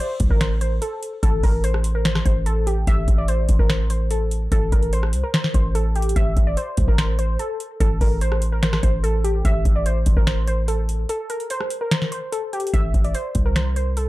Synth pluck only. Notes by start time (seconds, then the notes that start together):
0.00 C5
0.31 A#4
0.41 C5
0.61 C5
0.82 A4
1.23 A4
1.43 A#4
1.64 C5
1.95 A#4
2.05 C5
2.26 C5
2.46 A4
2.67 G4
2.88 E5
3.18 D5
3.28 C5
3.59 A#4
3.70 C5
3.90 C5
4.11 A4
4.52 A4
4.72 A#4
4.93 C5
5.24 A#4
5.34 C5
5.54 C5
5.75 A4
5.96 G4
6.16 E5
6.47 D5
6.57 C5
6.88 A#4
6.98 C5
7.19 C5
7.39 A4
7.80 A4
8.01 A#4
8.21 C5
8.52 A#4
8.63 C5
8.83 C5
9.04 A4
9.24 G4
9.45 E5
9.76 D5
9.86 C5
10.17 A#4
10.27 C5
10.48 C5
10.68 A4
11.09 A4
11.30 A#4
11.50 C5
11.81 A#4
11.91 C5
12.12 C5
12.32 A4
12.53 G4
12.73 E5
13.04 D5
13.15 C5
13.46 A#4
13.56 C5
13.76 C5
13.97 A4